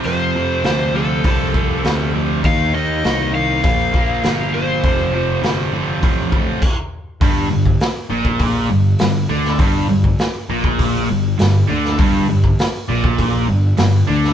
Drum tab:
CC |----------------|----------------|------------x---|----------------|
HH |o---o---o---o---|o---o---o---o---|o---o---o-------|o---o---o---o---|
SD |----o-------o---|----o-------o---|----o-----------|----o-------o--o|
BD |--------o-o-----|o-------o-o-----|o-------o-o-o---|o--o---oo-------|

CC |----------------|----------------|
HH |o---o---o---o---|o---o---o---o---|
SD |----o-------o--o|----o-------o--o|
BD |o--o---oo-------|o--o---oo-------|